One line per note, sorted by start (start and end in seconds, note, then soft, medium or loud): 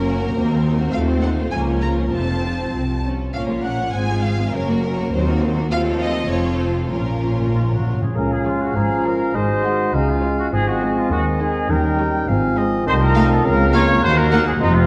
0.00 0.26 F#1 medium
0.00 0.26 F#2 medium
0.00 0.93 A#3 soft
0.00 0.35 C#4 medium
0.00 0.35 C#4 soft
0.00 0.94 F#4 medium
0.00 0.62 A#4 medium
0.00 0.94 A#4 medium
0.08 0.22 F#4 soft
0.23 0.36 C#4 soft
0.35 0.83 D#2 medium
0.35 0.84 D#2 medium
0.35 0.50 A#3 medium
0.35 1.50 C4 medium
0.35 0.93 C4 soft
0.51 0.65 C4 soft
0.65 0.79 D#4 soft
0.80 0.94 F#4 soft
0.92 1.43 D#2 medium
0.92 1.49 A3 medium
0.92 1.52 A3 medium
0.92 1.08 A3 medium
0.92 1.49 F4 medium
0.92 1.54 C5 medium
0.92 1.00 F5 medium
1.10 1.24 C4 medium
1.22 1.39 D#4 soft
1.22 1.30 F#5 medium
1.40 1.54 F4 soft
1.52 2.03 C#2 medium
1.52 3.14 F3 medium
1.52 2.13 A#3 medium
1.52 1.68 A#3 soft
1.52 2.13 C#4 medium
1.52 2.12 F4 soft
1.52 2.14 A#4 soft
1.52 1.60 G#5 medium
1.70 1.84 C#4 soft
1.82 1.99 F4 soft
1.82 1.90 A#5 medium
1.99 2.14 C#4 soft
2.13 2.64 F1 medium
2.13 2.64 F2 medium
2.13 2.28 A3 soft
2.13 3.12 C4 soft
2.13 3.04 C4 soft
2.13 3.02 F4 soft
2.13 2.69 C5 soft
2.13 3.02 A5 medium
2.30 2.45 C4 soft
2.46 2.60 F4 soft
2.60 2.74 C4 soft
2.74 3.25 C2 soft
2.74 2.83 C4 soft
3.05 3.34 C#4 soft
3.34 3.91 A#1 soft
3.34 3.91 A#2 soft
3.34 3.49 A#3 soft
3.34 3.91 C#4 soft
3.34 3.49 C#4 soft
3.34 3.91 F4 soft
3.34 3.49 A#4 soft
3.34 3.42 F5 medium
3.50 3.65 F3 soft
3.50 3.64 A#3 soft
3.50 3.65 F4 soft
3.50 3.66 C#5 soft
3.64 3.79 A#3 soft
3.64 3.80 C#4 soft
3.64 3.80 A#4 soft
3.64 3.94 F#5 medium
3.80 3.95 F3 soft
3.80 3.95 A#3 soft
3.80 3.95 F4 soft
3.80 3.95 C#5 soft
3.94 4.53 G#1 soft
3.94 4.53 G#2 soft
3.94 4.09 G#3 soft
3.94 4.09 C4 soft
3.94 4.54 C4 soft
3.94 4.53 F4 soft
3.94 4.09 G#4 soft
3.94 4.09 C5 soft
3.94 4.24 G#5 medium
4.10 4.25 F3 soft
4.10 4.23 G#3 soft
4.10 4.25 F4 soft
4.10 4.24 G#4 soft
4.24 4.37 G#3 soft
4.24 4.39 C4 soft
4.24 4.39 G#4 soft
4.24 4.40 C5 soft
4.24 4.54 F5 medium
4.39 4.54 F3 soft
4.39 4.54 G#3 soft
4.39 4.54 F4 soft
4.39 4.54 G#4 soft
4.54 5.12 F#1 medium
4.54 5.12 F#2 medium
4.54 4.68 F#3 medium
4.54 4.67 C#4 soft
4.54 5.13 C#4 medium
4.54 5.12 F#4 medium
4.54 5.42 A#4 medium
4.54 4.68 A#4 medium
4.69 4.84 A#3 medium
4.69 4.84 F#4 soft
4.69 4.84 C#5 soft
4.83 4.98 F#3 medium
4.83 4.98 C#4 medium
4.83 4.98 A#4 medium
4.98 5.13 A#3 soft
4.98 5.13 F#4 soft
4.98 5.13 C#5 soft
5.12 5.70 D#2 medium
5.12 5.27 F#3 medium
5.12 5.27 C4 medium
5.12 5.43 C4 medium
5.12 5.26 D#4 medium
5.12 5.70 F#4 medium
5.12 5.26 C5 medium
5.28 5.42 D#3 medium
5.28 5.42 A#3 soft
5.28 5.43 F#4 medium
5.28 5.42 A#4 medium
5.42 5.57 F#3 soft
5.42 5.71 A#3 medium
5.42 5.57 C4 soft
5.42 5.57 D#4 medium
5.42 5.57 C5 medium
5.57 5.72 D#3 soft
5.57 5.72 A#3 soft
5.57 5.71 F#4 soft
5.57 5.71 A#4 soft
5.70 6.26 D#2 medium
5.70 6.26 F3 medium
5.70 6.28 A3 medium
5.70 6.26 C4 medium
5.70 6.26 F4 medium
5.70 6.28 F4 medium
5.70 6.26 A4 medium
5.70 5.80 F5 medium
6.00 6.29 D#5 medium
6.29 6.92 F1 soft
6.29 6.92 F2 medium
6.29 6.90 F3 medium
6.29 6.43 A3 soft
6.29 6.90 C4 medium
6.29 6.90 F4 soft
6.29 6.90 F4 medium
6.29 6.90 A4 medium
6.29 6.60 C#5 medium
6.60 6.91 C4 soft
6.60 6.68 C5 medium
6.91 7.96 A#1 soft
6.91 7.95 A#2 soft
6.91 6.99 A#2 soft
6.91 7.93 F3 soft
6.91 7.48 C#4 soft
6.91 7.96 C#4 soft
6.91 7.93 F4 soft
6.91 7.47 F4 soft
6.91 7.53 A#4 soft
6.91 7.93 A#4 soft
7.00 7.07 A#2 soft
7.08 7.15 A#2 soft
7.17 7.22 A#2 soft
7.24 7.30 A#2 soft
7.32 7.38 A#2 soft
7.39 7.46 A#2 soft
7.47 7.54 A#2 soft
7.54 7.61 A#2 soft
7.54 7.68 D#4 soft
7.54 7.61 F4 soft
7.63 7.69 A#2 soft
7.70 7.77 A#2 soft
7.70 8.00 F#4 soft
7.78 7.85 A#2 medium
7.86 7.93 A#2 medium
7.86 8.16 C#4 soft
7.94 8.01 A#2 medium
8.02 8.09 A#2 medium
8.02 8.17 G#4 medium
8.16 8.63 C#2 medium
8.16 8.77 C#3 soft
8.16 8.72 G#3 soft
8.16 8.72 C#4 soft
8.16 8.72 F4 soft
8.16 8.31 A#4 medium
8.16 9.36 F5 medium
8.16 8.78 G#5 soft
8.32 8.46 G#4 medium
8.45 8.68 F3 medium
8.45 8.60 F4 medium
8.45 8.68 F4 medium
8.45 8.68 C#5 soft
8.62 8.76 F#4 medium
8.75 9.23 G#1 medium
8.75 9.23 G#2 medium
8.75 9.36 F3 soft
8.75 9.34 G#3 soft
8.75 9.37 C#4 soft
8.75 9.34 F4 soft
8.75 9.05 G#4 medium
8.75 9.37 A#5 soft
9.05 9.27 F3 soft
9.05 9.28 F4 medium
9.05 9.35 A#4 medium
9.05 9.27 C#5 medium
9.34 9.82 G#1 medium
9.34 9.82 G#2 medium
9.34 9.94 G#3 soft
9.34 9.93 G#3 medium
9.34 9.95 D#4 soft
9.34 9.94 F#4 soft
9.34 9.94 C5 medium
9.34 9.95 D#5 medium
9.34 9.67 G#5 soft
9.64 9.86 G#3 medium
9.64 9.86 F#4 medium
9.64 9.87 D#5 medium
9.64 9.95 F#5 soft
9.94 10.41 C#2 medium
9.94 10.41 C#3 medium
9.94 10.52 G#3 soft
9.94 10.53 C#4 medium
9.94 10.09 D#4 medium
9.94 10.53 F4 soft
9.94 10.52 F5 soft
9.94 10.52 G#5 medium
10.09 10.39 F4 medium
10.23 10.45 G#3 soft
10.23 10.45 F4 medium
10.23 10.45 C#5 medium
10.39 10.46 F#4 medium
10.52 10.99 G#1 medium
10.52 10.99 G#2 medium
10.52 11.12 F3 medium
10.52 11.68 G#3 medium
10.52 11.13 C4 medium
10.52 11.68 C4 medium
10.52 10.67 G#4 medium
10.52 11.10 D#5 soft
10.52 11.68 G#5 medium
10.68 10.97 F#4 medium
10.82 11.04 G#3 medium
10.82 11.04 D#4 medium
10.82 11.04 C5 soft
10.98 11.12 F4 medium
11.11 11.57 D#2 medium
11.11 11.69 D#3 soft
11.11 12.30 D#4 medium
11.11 11.25 F#4 medium
11.11 11.71 D#5 medium
11.39 11.62 G#3 medium
11.39 11.62 D#4 medium
11.39 11.69 G#4 medium
11.39 11.62 C5 medium
11.68 12.16 D#2 medium
11.68 12.30 D#3 medium
11.68 12.28 G3 medium
11.68 12.28 C#4 medium
11.68 12.28 A#4 medium
11.68 12.30 G5 medium
11.68 12.27 G5 medium
11.98 12.21 G3 medium
11.98 12.21 D#4 medium
11.98 12.21 C#5 medium
12.28 12.74 G#1 medium
12.28 12.74 G#2 medium
12.28 12.88 F3 medium
12.28 12.87 G#3 medium
12.28 12.86 C4 medium
12.28 12.85 C4 medium
12.28 12.59 F5 medium
12.28 12.89 G#5 medium
12.57 12.79 G#3 medium
12.57 12.79 D#4 medium
12.57 12.79 C5 medium
12.57 12.86 D#5 medium
12.86 13.35 C2 medium
12.86 13.46 D#3 medium
12.86 13.41 A3 medium
12.86 14.05 C4 medium
12.86 13.98 F4 medium
12.86 12.93 C5 loud
12.86 13.44 D#5 medium
12.86 13.46 A5 medium
13.01 13.30 A#4 loud
13.15 13.29 A3 medium
13.15 13.29 D#4 medium
13.15 13.29 F5 medium
13.31 13.45 A4 medium
13.45 13.93 C#2 medium
13.45 14.33 C#3 medium
13.45 14.60 A#3 medium
13.45 13.74 A#4 loud
13.45 14.04 F5 medium
13.45 14.33 A#5 medium
13.74 13.87 A#3 medium
13.74 13.87 F4 medium
13.74 14.02 C#5 loud
13.74 13.87 F5 medium
14.02 14.50 D#2 medium
14.02 14.51 D#2 medium
14.02 14.40 A#3 medium
14.02 14.59 F#4 medium
14.02 14.17 C5 loud
14.02 14.87 F#5 medium
14.17 14.46 A#4 loud
14.32 14.45 A#3 medium
14.32 14.45 D#4 medium
14.32 14.45 F#5 medium
14.47 14.53 G#4 medium
14.60 14.87 F1 medium
14.60 14.87 F2 medium
14.60 14.87 C3 medium
14.60 14.87 A3 medium
14.60 14.87 C4 medium
14.60 14.74 D#4 loud
14.60 14.87 F4 medium
14.60 14.87 C6 medium
14.74 14.87 F4 medium